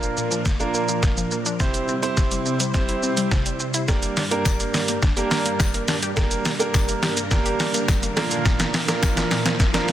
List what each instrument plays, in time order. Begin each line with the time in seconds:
Already playing: string machine A#2 F3 D4 A#4, grand piano A#3 D4 F4 A#4
0.03 synth arpeggio sound F3, shaker
0.17 synth arpeggio sound A#2, shaker
0.31 synth arpeggio sound F3, shaker
0.46 synth arpeggio sound A#3, kick, snare, shaker
0.60 grand piano A#3 D4 F4 A#4, synth arpeggio sound D4, shaker
0.74 synth arpeggio sound A#3, shaker
0.89 synth arpeggio sound F3, shaker
1.03 synth arpeggio sound A#2, kick, snare, shaker
1.17 synth arpeggio sound F3, shaker
1.31 synth arpeggio sound A#3, shaker
1.46 synth arpeggio sound D4, shaker
1.60 synth arpeggio sound C3, grand piano C4 E4 G4 C5, kick, snare, shaker
1.74 closed hi-hat, shaker
1.88 synth arpeggio sound C4, shaker
2.02 grand piano C4 E4 G4 C5, closed hi-hat, shaker
2.17 synth arpeggio sound C4, kick, snare, shaker
2.31 synth arpeggio sound G3, closed hi-hat, shaker
2.46 synth arpeggio sound C3, shaker
2.60 synth arpeggio sound G3, closed hi-hat, shaker
2.74 grand piano C4 E4 G4 C5, synth arpeggio sound C4, kick, snare, shaker
2.89 synth arpeggio sound E4, closed hi-hat, shaker
3.03 synth arpeggio sound C4, shaker
3.17 synth arpeggio sound G3, closed hi-hat, shaker
3.31 synth arpeggio sound C3, kick, snare, shaker
3.46 synth arpeggio sound G3, closed hi-hat, shaker
3.60 synth arpeggio sound C4, shaker
3.74 synth arpeggio sound E4, closed hi-hat, shaker
3.88 synth arpeggio sound G3, grand piano A#3 D4 G4 A#4, kick, snare, riser, shaker
4.03 closed hi-hat, shaker
4.17 synth arpeggio sound D4, snare, open hi-hat, shaker
4.31 grand piano A#3 D4 G4 A#4, closed hi-hat, shaker
4.45 synth arpeggio sound D4, kick, snare, tambourine, shaker
4.60 synth arpeggio sound A#3, closed hi-hat, shaker
4.74 synth arpeggio sound G3, snare, open hi-hat, shaker
4.88 synth arpeggio sound A#3, closed hi-hat, shaker
5.02 synth arpeggio sound D4, kick, snare, shaker
5.17 grand piano A#3 D4 G4 A#4, synth arpeggio sound G4, closed hi-hat, shaker
5.31 synth arpeggio sound D4, snare, open hi-hat, shaker
5.46 synth arpeggio sound A#3, closed hi-hat, shaker
5.60 synth arpeggio sound G3, kick, snare, tambourine, shaker
5.74 synth arpeggio sound A#3, closed hi-hat, shaker
5.88 synth arpeggio sound D4, snare, open hi-hat, shaker
6.03 synth arpeggio sound G4, closed hi-hat, shaker
6.17 synth arpeggio sound G3, grand piano A#3 D4 G4 A#4, kick, snare, shaker
6.31 closed hi-hat, shaker
6.45 synth arpeggio sound D4, snare, open hi-hat, shaker
6.59 grand piano A#3 D4 G4 A#4, closed hi-hat, shaker
6.74 synth arpeggio sound D4, kick, snare, tambourine, shaker
6.88 synth arpeggio sound A#3, closed hi-hat, shaker
7.03 synth arpeggio sound G3, snare, open hi-hat, shaker
7.17 synth arpeggio sound A#3, closed hi-hat, shaker
7.31 grand piano A#3 D4 G4 A#4, synth arpeggio sound D4, kick, snare, shaker
7.46 synth arpeggio sound G4, closed hi-hat, shaker
7.60 synth arpeggio sound D4, snare, open hi-hat, shaker
7.74 synth arpeggio sound A#3, closed hi-hat, shaker
7.88 synth arpeggio sound G3, kick, snare, tambourine, shaker
8.03 synth arpeggio sound A#3, closed hi-hat, shaker
8.17 string machine A#2 F3, grand piano A#3 D4 F4 A#4, synth arpeggio sound A#3, snare, open hi-hat, shaker
8.31 synth arpeggio sound D4, closed hi-hat, shaker
8.45 synth arpeggio sound A#2, kick, snare, shaker
8.60 snare, closed hi-hat, shaker
8.74 synth arpeggio sound A#3, snare, open hi-hat, shaker
8.88 grand piano A#3 D4 F4 A#4, snare, closed hi-hat, shaker
9.03 synth arpeggio sound A#3, kick, snare, tambourine, shaker
9.17 synth arpeggio sound F3, snare, closed hi-hat, shaker
9.31 synth arpeggio sound A#2, snare, open hi-hat, shaker
9.46 synth arpeggio sound F3, snare, closed hi-hat, shaker
9.60 synth arpeggio sound A#3, kick, snare, shaker
9.74 grand piano A#3 D4 F4 A#4, synth arpeggio sound D4, snare, closed hi-hat, shaker
9.88 synth arpeggio sound A#3, snare, open hi-hat, shaker